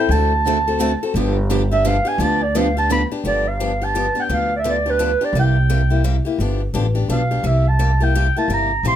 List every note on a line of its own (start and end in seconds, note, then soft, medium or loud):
0.00 0.11 C4 medium
0.00 0.10 E4 medium
0.00 0.13 G5 loud
0.09 0.93 D2 loud
0.09 0.31 D3 medium
0.09 0.31 A3 medium
0.09 0.32 C4 medium
0.09 0.32 F#4 medium
0.09 0.32 A4 medium
0.09 1.15 A5 medium
0.47 0.57 D3 medium
0.47 0.57 A3 medium
0.47 0.57 C4 medium
0.47 0.57 F#4 loud
0.47 0.57 A4 loud
0.68 0.79 C4 soft
0.68 0.79 F#4 medium
0.68 0.79 A4 medium
0.80 0.91 D3 medium
0.80 0.91 A3 medium
0.80 0.91 C4 loud
0.80 0.91 F#4 medium
0.80 0.91 A4 loud
1.03 1.16 C4 soft
1.03 1.15 F#4 medium
1.03 1.15 A4 medium
1.14 1.98 G1 loud
1.14 1.36 D3 medium
1.14 1.36 F3 medium
1.14 1.36 B3 medium
1.14 1.36 D4 medium
1.14 1.36 G4 medium
1.50 1.61 D3 medium
1.50 1.61 F3 medium
1.50 1.61 B3 medium
1.50 1.61 D4 loud
1.50 1.61 G4 loud
1.71 1.84 B3 medium
1.71 1.84 D4 medium
1.71 1.84 G4 medium
1.71 1.88 E5 loud
1.85 1.96 D3 loud
1.85 1.96 F3 medium
1.85 1.96 B3 medium
1.85 1.96 D4 loud
1.85 1.96 G4 loud
1.85 2.09 F5 loud
2.05 2.19 B3 medium
2.05 2.19 D4 medium
2.05 2.19 G4 medium
2.05 2.22 G#5 loud
2.18 3.03 D2 loud
2.18 2.40 D3 medium
2.18 2.40 F3 medium
2.18 2.41 B3 medium
2.18 2.41 D4 medium
2.18 2.41 G4 medium
2.18 2.44 A5 loud
2.43 2.59 D5 medium
2.55 2.66 D3 medium
2.55 2.66 F3 loud
2.55 2.66 B3 medium
2.55 2.66 D4 medium
2.55 2.66 G4 loud
2.55 2.77 F5 medium
2.77 2.90 B3 medium
2.77 2.90 D4 medium
2.77 2.90 G4 medium
2.77 2.90 A5 loud
2.90 3.01 D3 medium
2.90 3.01 F3 medium
2.90 3.01 B3 medium
2.90 3.01 D4 loud
2.90 3.01 G4 loud
2.90 3.04 B5 loud
3.12 3.24 B3 soft
3.12 3.24 D4 medium
3.12 3.24 G4 medium
3.24 4.08 G1 medium
3.24 3.45 D3 medium
3.24 3.45 F3 medium
3.24 3.46 B3 medium
3.24 3.46 D4 medium
3.24 3.46 G4 medium
3.24 3.49 D5 medium
3.48 3.85 F5 medium
3.60 3.71 D3 medium
3.60 3.71 F3 medium
3.60 3.71 B3 medium
3.60 3.71 D4 medium
3.60 3.71 G4 medium
3.81 3.95 B3 soft
3.81 3.94 D4 soft
3.81 3.94 G4 medium
3.81 4.21 A5 medium
3.95 4.06 D3 medium
3.95 4.06 F3 medium
3.95 4.06 B3 medium
3.95 4.06 D4 medium
3.95 4.06 G4 medium
4.15 4.29 B3 medium
4.15 4.29 D4 medium
4.15 4.29 G4 medium
4.20 4.23 F#5 medium
4.20 4.35 G5 medium
4.29 5.13 D2 medium
4.29 4.50 D3 medium
4.29 4.50 F3 medium
4.29 4.50 B3 medium
4.29 4.50 D4 medium
4.29 4.51 G4 medium
4.33 4.55 F5 medium
4.56 4.59 D5 medium
4.56 4.70 E5 medium
4.64 4.75 D3 medium
4.64 4.75 F3 medium
4.64 4.76 B3 medium
4.64 4.76 D4 medium
4.64 4.76 G4 medium
4.69 4.92 D5 medium
4.86 4.98 B3 soft
4.86 4.99 D4 medium
4.86 4.99 G4 medium
4.90 5.26 B4 medium
4.99 5.10 D3 medium
4.99 5.11 F3 medium
4.99 5.11 B3 medium
4.99 5.11 D4 medium
4.99 5.11 G4 medium
5.21 5.35 B3 soft
5.21 5.35 D4 medium
5.21 5.34 G4 medium
5.21 5.37 D5 medium
5.33 6.18 C2 medium
5.33 5.56 C3 medium
5.33 5.56 G3 medium
5.33 5.56 A#3 medium
5.33 5.56 E4 medium
5.33 5.56 G4 medium
5.39 6.03 G5 medium
5.70 5.81 C3 medium
5.70 5.81 G3 medium
5.70 5.81 A#3 medium
5.70 5.81 E4 medium
5.70 5.81 G4 medium
5.90 6.03 A#3 soft
5.90 6.03 E4 medium
5.90 6.04 G4 medium
6.04 6.15 C3 medium
6.04 6.16 G3 medium
6.04 6.16 A#3 medium
6.04 6.16 E4 medium
6.04 6.16 G4 medium
6.25 6.40 A#3 soft
6.25 6.39 E4 medium
6.25 6.39 G4 medium
6.38 6.67 G1 medium
6.38 6.61 D3 medium
6.38 6.61 F3 medium
6.38 6.61 B3 medium
6.38 6.61 D4 medium
6.38 6.61 G4 medium
6.74 7.04 A1 medium
6.74 6.85 D3 medium
6.74 6.86 F3 medium
6.74 6.86 B3 medium
6.74 6.86 D4 medium
6.74 6.86 G4 medium
6.95 7.08 B3 soft
6.95 7.09 D4 medium
6.95 7.09 G4 medium
7.08 7.39 B1 medium
7.08 7.21 D3 medium
7.08 7.21 F3 medium
7.08 7.21 B3 medium
7.08 7.21 D4 medium
7.08 7.21 G4 medium
7.08 7.48 F5 medium
7.31 7.44 B3 soft
7.31 7.44 D4 medium
7.31 7.43 G4 medium
7.43 8.28 C2 medium
7.43 7.65 C3 medium
7.43 7.65 G3 medium
7.43 7.65 A#3 medium
7.43 7.65 E4 medium
7.43 7.65 G4 medium
7.43 7.70 E5 medium
7.68 8.05 A5 loud
7.79 7.90 C3 medium
7.79 7.91 G3 medium
7.79 7.91 A#3 medium
7.79 7.91 E4 medium
7.79 7.91 G4 medium
8.00 8.15 A#3 soft
8.00 8.14 E4 medium
8.00 8.14 G4 medium
8.00 8.37 G5 loud
8.15 8.26 C3 medium
8.15 8.26 G3 medium
8.15 8.26 A#3 medium
8.15 8.26 E4 medium
8.15 8.26 G4 loud
8.37 8.49 A#3 soft
8.37 8.49 E4 soft
8.37 8.49 G4 medium
8.37 8.50 A5 medium
8.48 8.77 G1 medium
8.48 8.70 C3 medium
8.48 8.71 G3 medium
8.48 8.71 A#3 medium
8.48 8.71 E4 medium
8.48 8.71 G4 medium
8.53 8.84 A#5 loud
8.83 8.96 A#1 medium
8.83 8.96 C3 medium
8.83 8.96 G3 medium
8.83 8.96 A#3 medium
8.83 8.96 E4 medium
8.83 8.96 G4 medium
8.88 8.96 C6 loud